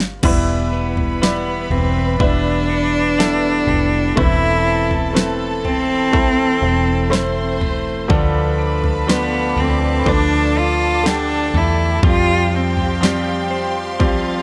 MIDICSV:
0, 0, Header, 1, 8, 480
1, 0, Start_track
1, 0, Tempo, 983607
1, 116, Time_signature, 4, 2, 24, 8
1, 7038, End_track
2, 0, Start_track
2, 0, Title_t, "String section"
2, 0, Program_c, 0, 48
2, 3958, Note_on_c, 0, 86, 93
2, 3961, Note_on_c, 0, 81, 75
2, 3962, Note_on_c, 0, 69, 88
2, 3962, Note_on_c, 0, 74, 73
2, 5857, Note_off_c, 0, 86, 0
2, 5859, Note_off_c, 0, 74, 0
2, 5859, Note_off_c, 0, 81, 0
2, 5860, Note_off_c, 0, 69, 0
2, 5875, Note_on_c, 0, 67, 81
2, 5876, Note_on_c, 0, 72, 70
2, 5876, Note_on_c, 0, 77, 73
2, 5877, Note_on_c, 0, 84, 94
2, 7038, Note_off_c, 0, 67, 0
2, 7038, Note_off_c, 0, 72, 0
2, 7038, Note_off_c, 0, 77, 0
2, 7038, Note_off_c, 0, 84, 0
2, 7038, End_track
3, 0, Start_track
3, 0, Title_t, "Violin section"
3, 0, Program_c, 1, 48
3, 112, Note_on_c, 1, 83, 82
3, 113, Note_on_c, 1, 71, 80
3, 2014, Note_off_c, 1, 83, 0
3, 2015, Note_off_c, 1, 71, 0
3, 2033, Note_on_c, 1, 81, 86
3, 2035, Note_on_c, 1, 69, 84
3, 3455, Note_off_c, 1, 81, 0
3, 3456, Note_off_c, 1, 69, 0
3, 3464, Note_on_c, 1, 72, 86
3, 3465, Note_on_c, 1, 84, 89
3, 3940, Note_off_c, 1, 72, 0
3, 3941, Note_off_c, 1, 84, 0
3, 3954, Note_on_c, 1, 71, 78
3, 3958, Note_on_c, 1, 83, 85
3, 4896, Note_off_c, 1, 71, 0
3, 4898, Note_off_c, 1, 83, 0
3, 4910, Note_on_c, 1, 81, 94
3, 4911, Note_on_c, 1, 69, 86
3, 5854, Note_off_c, 1, 69, 0
3, 5854, Note_off_c, 1, 81, 0
3, 5873, Note_on_c, 1, 67, 81
3, 5876, Note_on_c, 1, 79, 95
3, 6815, Note_off_c, 1, 67, 0
3, 6817, Note_off_c, 1, 79, 0
3, 6839, Note_on_c, 1, 77, 89
3, 6841, Note_on_c, 1, 65, 85
3, 7038, Note_off_c, 1, 65, 0
3, 7038, Note_off_c, 1, 77, 0
3, 7038, End_track
4, 0, Start_track
4, 0, Title_t, "Cello"
4, 0, Program_c, 2, 42
4, 599, Note_on_c, 2, 59, 81
4, 835, Note_on_c, 2, 60, 83
4, 843, Note_off_c, 2, 59, 0
4, 1069, Note_off_c, 2, 60, 0
4, 1072, Note_on_c, 2, 62, 110
4, 2038, Note_on_c, 2, 64, 109
4, 2045, Note_off_c, 2, 62, 0
4, 2517, Note_off_c, 2, 64, 0
4, 2755, Note_on_c, 2, 60, 113
4, 3696, Note_off_c, 2, 60, 0
4, 4439, Note_on_c, 2, 59, 100
4, 4683, Note_on_c, 2, 60, 86
4, 4690, Note_off_c, 2, 59, 0
4, 4922, Note_on_c, 2, 62, 104
4, 4929, Note_off_c, 2, 60, 0
4, 5165, Note_on_c, 2, 65, 99
4, 5172, Note_off_c, 2, 62, 0
4, 5404, Note_on_c, 2, 62, 99
4, 5412, Note_off_c, 2, 65, 0
4, 5646, Note_on_c, 2, 64, 88
4, 5653, Note_off_c, 2, 62, 0
4, 5880, Note_off_c, 2, 64, 0
4, 5886, Note_on_c, 2, 65, 114
4, 6128, Note_on_c, 2, 60, 88
4, 6136, Note_off_c, 2, 65, 0
4, 6602, Note_off_c, 2, 60, 0
4, 7038, End_track
5, 0, Start_track
5, 0, Title_t, "Clean electric guitar"
5, 0, Program_c, 3, 27
5, 117, Note_on_c, 3, 40, 80
5, 119, Note_on_c, 3, 64, 64
5, 355, Note_on_c, 3, 59, 57
5, 593, Note_off_c, 3, 64, 0
5, 595, Note_on_c, 3, 64, 61
5, 1076, Note_off_c, 3, 64, 0
5, 1077, Note_on_c, 3, 64, 65
5, 1313, Note_off_c, 3, 59, 0
5, 1315, Note_on_c, 3, 59, 48
5, 1550, Note_off_c, 3, 64, 0
5, 1552, Note_on_c, 3, 64, 59
5, 1792, Note_on_c, 3, 55, 61
5, 2028, Note_off_c, 3, 40, 0
5, 2034, Note_on_c, 3, 40, 80
5, 2035, Note_off_c, 3, 64, 0
5, 2037, Note_on_c, 3, 64, 70
5, 2082, Note_off_c, 3, 55, 0
5, 2272, Note_off_c, 3, 59, 0
5, 2273, Note_on_c, 3, 60, 58
5, 2511, Note_off_c, 3, 64, 0
5, 2517, Note_on_c, 3, 64, 59
5, 2750, Note_off_c, 3, 60, 0
5, 2756, Note_on_c, 3, 60, 59
5, 2991, Note_off_c, 3, 64, 0
5, 2997, Note_on_c, 3, 64, 72
5, 3227, Note_off_c, 3, 60, 0
5, 3233, Note_on_c, 3, 60, 58
5, 3467, Note_off_c, 3, 64, 0
5, 3473, Note_on_c, 3, 64, 68
5, 3713, Note_on_c, 3, 57, 63
5, 3952, Note_on_c, 3, 50, 89
5, 3953, Note_off_c, 3, 64, 0
5, 3955, Note_off_c, 3, 40, 0
5, 3955, Note_on_c, 3, 65, 73
5, 4002, Note_off_c, 3, 60, 0
5, 4189, Note_on_c, 3, 62, 63
5, 4431, Note_off_c, 3, 65, 0
5, 4433, Note_on_c, 3, 65, 64
5, 4665, Note_off_c, 3, 62, 0
5, 4671, Note_on_c, 3, 62, 62
5, 4911, Note_off_c, 3, 65, 0
5, 4913, Note_on_c, 3, 65, 69
5, 5150, Note_off_c, 3, 62, 0
5, 5155, Note_on_c, 3, 62, 59
5, 5421, Note_off_c, 3, 57, 0
5, 5636, Note_on_c, 3, 57, 62
5, 5871, Note_off_c, 3, 50, 0
5, 5873, Note_on_c, 3, 53, 88
5, 5876, Note_off_c, 3, 65, 0
5, 5878, Note_on_c, 3, 65, 72
5, 5923, Note_off_c, 3, 62, 0
5, 5924, Note_off_c, 3, 57, 0
5, 6116, Note_on_c, 3, 60, 62
5, 6346, Note_off_c, 3, 65, 0
5, 6352, Note_on_c, 3, 65, 64
5, 6590, Note_off_c, 3, 60, 0
5, 6592, Note_on_c, 3, 60, 58
5, 6825, Note_off_c, 3, 65, 0
5, 6831, Note_on_c, 3, 65, 70
5, 7038, Note_off_c, 3, 53, 0
5, 7038, Note_off_c, 3, 60, 0
5, 7038, Note_off_c, 3, 65, 0
5, 7038, End_track
6, 0, Start_track
6, 0, Title_t, "Upright piano"
6, 0, Program_c, 4, 0
6, 0, Control_c, 4, 64, 127
6, 0, Note_on_c, 4, 55, 40
6, 0, Note_on_c, 4, 65, 36
6, 0, Note_on_c, 4, 74, 47
6, 108, Note_off_c, 4, 55, 0
6, 115, Note_off_c, 4, 65, 0
6, 116, Note_on_c, 4, 55, 86
6, 118, Note_off_c, 4, 74, 0
6, 118, Note_on_c, 4, 59, 78
6, 119, Note_on_c, 4, 64, 82
6, 121, Note_on_c, 4, 52, 71
6, 122, Note_on_c, 4, 71, 101
6, 123, Control_c, 4, 64, 0
6, 201, Control_c, 4, 64, 127
6, 572, Note_off_c, 4, 55, 0
6, 573, Note_off_c, 4, 59, 0
6, 573, Note_off_c, 4, 64, 0
6, 575, Note_off_c, 4, 71, 0
6, 590, Note_on_c, 4, 55, 62
6, 594, Note_on_c, 4, 71, 60
6, 595, Note_on_c, 4, 64, 60
6, 601, Note_on_c, 4, 74, 80
6, 819, Note_off_c, 4, 52, 0
6, 1049, Note_off_c, 4, 55, 0
6, 1051, Note_off_c, 4, 64, 0
6, 1051, Note_off_c, 4, 71, 0
6, 1054, Note_off_c, 4, 74, 0
6, 1069, Note_on_c, 4, 55, 70
6, 1074, Note_on_c, 4, 59, 63
6, 1077, Note_on_c, 4, 64, 62
6, 1078, Note_on_c, 4, 71, 73
6, 1528, Note_off_c, 4, 55, 0
6, 1531, Note_off_c, 4, 59, 0
6, 1532, Note_off_c, 4, 64, 0
6, 1533, Note_off_c, 4, 71, 0
6, 1552, Note_on_c, 4, 55, 72
6, 1554, Note_on_c, 4, 59, 64
6, 1559, Note_on_c, 4, 64, 66
6, 1560, Note_on_c, 4, 69, 80
6, 2010, Note_off_c, 4, 55, 0
6, 2011, Note_off_c, 4, 59, 0
6, 2013, Note_off_c, 4, 64, 0
6, 2013, Note_off_c, 4, 69, 0
6, 2029, Note_on_c, 4, 57, 75
6, 2032, Note_on_c, 4, 60, 69
6, 2033, Note_on_c, 4, 52, 68
6, 2035, Note_on_c, 4, 64, 69
6, 2038, Note_on_c, 4, 71, 86
6, 2042, Control_c, 4, 64, 0
6, 2116, Control_c, 4, 64, 127
6, 2488, Note_off_c, 4, 57, 0
6, 2490, Note_off_c, 4, 60, 0
6, 2491, Note_off_c, 4, 64, 0
6, 2493, Note_off_c, 4, 71, 0
6, 2504, Note_on_c, 4, 57, 69
6, 2509, Note_on_c, 4, 60, 65
6, 2512, Note_on_c, 4, 64, 61
6, 2514, Note_on_c, 4, 71, 75
6, 2735, Note_off_c, 4, 52, 0
6, 2966, Note_off_c, 4, 57, 0
6, 2968, Note_off_c, 4, 60, 0
6, 2970, Note_off_c, 4, 64, 0
6, 2971, Note_off_c, 4, 71, 0
6, 2986, Note_on_c, 4, 57, 75
6, 2990, Note_on_c, 4, 60, 65
6, 2991, Note_on_c, 4, 64, 66
6, 2994, Note_on_c, 4, 69, 81
6, 3447, Note_off_c, 4, 57, 0
6, 3449, Note_off_c, 4, 60, 0
6, 3449, Note_off_c, 4, 64, 0
6, 3451, Note_off_c, 4, 69, 0
6, 3465, Note_on_c, 4, 57, 96
6, 3468, Note_on_c, 4, 60, 81
6, 3471, Note_on_c, 4, 64, 87
6, 3474, Note_on_c, 4, 72, 104
6, 3926, Note_off_c, 4, 57, 0
6, 3928, Note_off_c, 4, 60, 0
6, 3929, Note_off_c, 4, 64, 0
6, 3931, Note_off_c, 4, 72, 0
6, 3944, Note_on_c, 4, 53, 92
6, 3946, Note_on_c, 4, 57, 81
6, 3948, Note_on_c, 4, 50, 78
6, 3948, Note_on_c, 4, 62, 85
6, 3952, Note_on_c, 4, 69, 101
6, 3961, Control_c, 4, 64, 0
6, 4037, Control_c, 4, 64, 127
6, 4406, Note_off_c, 4, 53, 0
6, 4407, Note_off_c, 4, 57, 0
6, 4408, Note_off_c, 4, 62, 0
6, 4410, Note_off_c, 4, 69, 0
6, 4426, Note_on_c, 4, 53, 73
6, 4429, Note_on_c, 4, 57, 69
6, 4433, Note_on_c, 4, 62, 68
6, 4434, Note_on_c, 4, 71, 79
6, 4652, Note_off_c, 4, 50, 0
6, 4887, Note_off_c, 4, 53, 0
6, 4888, Note_off_c, 4, 57, 0
6, 4890, Note_off_c, 4, 62, 0
6, 4891, Note_off_c, 4, 71, 0
6, 4905, Note_on_c, 4, 53, 70
6, 4908, Note_on_c, 4, 57, 69
6, 4912, Note_on_c, 4, 62, 68
6, 4914, Note_on_c, 4, 71, 86
6, 5366, Note_off_c, 4, 53, 0
6, 5368, Note_off_c, 4, 57, 0
6, 5370, Note_off_c, 4, 62, 0
6, 5371, Note_off_c, 4, 71, 0
6, 5384, Note_on_c, 4, 50, 70
6, 5386, Note_on_c, 4, 57, 65
6, 5390, Note_on_c, 4, 62, 69
6, 5393, Note_on_c, 4, 67, 86
6, 5846, Note_off_c, 4, 50, 0
6, 5847, Note_off_c, 4, 57, 0
6, 5849, Note_off_c, 4, 62, 0
6, 5850, Note_off_c, 4, 67, 0
6, 5868, Note_on_c, 4, 53, 76
6, 5872, Note_on_c, 4, 55, 68
6, 5874, Note_on_c, 4, 60, 66
6, 5876, Note_on_c, 4, 67, 88
6, 5882, Control_c, 4, 64, 0
6, 5980, Control_c, 4, 64, 127
6, 6328, Note_off_c, 4, 53, 0
6, 6330, Note_off_c, 4, 55, 0
6, 6331, Note_off_c, 4, 60, 0
6, 6332, Note_off_c, 4, 67, 0
6, 6348, Note_on_c, 4, 53, 74
6, 6353, Note_on_c, 4, 55, 65
6, 6356, Note_on_c, 4, 60, 62
6, 6359, Note_on_c, 4, 67, 74
6, 6808, Note_off_c, 4, 53, 0
6, 6810, Note_off_c, 4, 55, 0
6, 6812, Note_off_c, 4, 60, 0
6, 6813, Note_off_c, 4, 67, 0
6, 6829, Note_on_c, 4, 53, 84
6, 6833, Note_on_c, 4, 55, 77
6, 6836, Note_on_c, 4, 60, 80
6, 6839, Note_on_c, 4, 67, 92
6, 7038, Note_off_c, 4, 53, 0
6, 7038, Note_off_c, 4, 55, 0
6, 7038, Note_off_c, 4, 60, 0
6, 7038, Note_off_c, 4, 67, 0
6, 7038, End_track
7, 0, Start_track
7, 0, Title_t, "Fingered electric bass"
7, 0, Program_c, 5, 33
7, 0, Note_on_c, 5, 31, 73
7, 95, Note_off_c, 5, 31, 0
7, 115, Note_on_c, 5, 28, 89
7, 816, Note_off_c, 5, 28, 0
7, 831, Note_on_c, 5, 28, 93
7, 1056, Note_off_c, 5, 28, 0
7, 1072, Note_on_c, 5, 28, 86
7, 1774, Note_off_c, 5, 28, 0
7, 1791, Note_on_c, 5, 29, 80
7, 2016, Note_off_c, 5, 29, 0
7, 2035, Note_on_c, 5, 28, 87
7, 3216, Note_off_c, 5, 28, 0
7, 3231, Note_on_c, 5, 28, 103
7, 3934, Note_off_c, 5, 28, 0
7, 3952, Note_on_c, 5, 38, 107
7, 4654, Note_off_c, 5, 38, 0
7, 4667, Note_on_c, 5, 38, 88
7, 4894, Note_off_c, 5, 38, 0
7, 4909, Note_on_c, 5, 38, 105
7, 5613, Note_off_c, 5, 38, 0
7, 5631, Note_on_c, 5, 40, 92
7, 5856, Note_off_c, 5, 40, 0
7, 5870, Note_on_c, 5, 41, 106
7, 7038, Note_off_c, 5, 41, 0
7, 7038, End_track
8, 0, Start_track
8, 0, Title_t, "Drums"
8, 1, Note_on_c, 9, 38, 71
8, 50, Note_off_c, 9, 38, 0
8, 112, Note_on_c, 9, 43, 98
8, 112, Note_on_c, 9, 49, 95
8, 115, Note_on_c, 9, 36, 108
8, 161, Note_off_c, 9, 43, 0
8, 161, Note_off_c, 9, 49, 0
8, 163, Note_off_c, 9, 36, 0
8, 474, Note_on_c, 9, 43, 66
8, 522, Note_off_c, 9, 43, 0
8, 601, Note_on_c, 9, 38, 103
8, 649, Note_off_c, 9, 38, 0
8, 835, Note_on_c, 9, 43, 61
8, 884, Note_off_c, 9, 43, 0
8, 1074, Note_on_c, 9, 36, 78
8, 1077, Note_on_c, 9, 43, 61
8, 1123, Note_off_c, 9, 36, 0
8, 1126, Note_off_c, 9, 43, 0
8, 1562, Note_on_c, 9, 38, 125
8, 1611, Note_off_c, 9, 38, 0
8, 1800, Note_on_c, 9, 43, 67
8, 1849, Note_off_c, 9, 43, 0
8, 2036, Note_on_c, 9, 36, 118
8, 2038, Note_on_c, 9, 43, 96
8, 2085, Note_off_c, 9, 36, 0
8, 2087, Note_off_c, 9, 43, 0
8, 2396, Note_on_c, 9, 43, 68
8, 2445, Note_off_c, 9, 43, 0
8, 2520, Note_on_c, 9, 38, 107
8, 2569, Note_off_c, 9, 38, 0
8, 2756, Note_on_c, 9, 43, 59
8, 2804, Note_off_c, 9, 43, 0
8, 2993, Note_on_c, 9, 36, 79
8, 2995, Note_on_c, 9, 43, 69
8, 3042, Note_off_c, 9, 36, 0
8, 3044, Note_off_c, 9, 43, 0
8, 3480, Note_on_c, 9, 38, 115
8, 3529, Note_off_c, 9, 38, 0
8, 3715, Note_on_c, 9, 43, 71
8, 3764, Note_off_c, 9, 43, 0
8, 3952, Note_on_c, 9, 43, 99
8, 3953, Note_on_c, 9, 36, 117
8, 4000, Note_off_c, 9, 43, 0
8, 4002, Note_off_c, 9, 36, 0
8, 4312, Note_on_c, 9, 43, 69
8, 4361, Note_off_c, 9, 43, 0
8, 4438, Note_on_c, 9, 38, 108
8, 4487, Note_off_c, 9, 38, 0
8, 4673, Note_on_c, 9, 43, 61
8, 4722, Note_off_c, 9, 43, 0
8, 4911, Note_on_c, 9, 36, 82
8, 4912, Note_on_c, 9, 43, 63
8, 4960, Note_off_c, 9, 36, 0
8, 4961, Note_off_c, 9, 43, 0
8, 5399, Note_on_c, 9, 38, 118
8, 5447, Note_off_c, 9, 38, 0
8, 5633, Note_on_c, 9, 43, 73
8, 5682, Note_off_c, 9, 43, 0
8, 5871, Note_on_c, 9, 36, 113
8, 5871, Note_on_c, 9, 43, 110
8, 5920, Note_off_c, 9, 36, 0
8, 5920, Note_off_c, 9, 43, 0
8, 6232, Note_on_c, 9, 43, 65
8, 6280, Note_off_c, 9, 43, 0
8, 6360, Note_on_c, 9, 38, 103
8, 6408, Note_off_c, 9, 38, 0
8, 6832, Note_on_c, 9, 36, 78
8, 6835, Note_on_c, 9, 43, 69
8, 6881, Note_off_c, 9, 36, 0
8, 6884, Note_off_c, 9, 43, 0
8, 7038, End_track
0, 0, End_of_file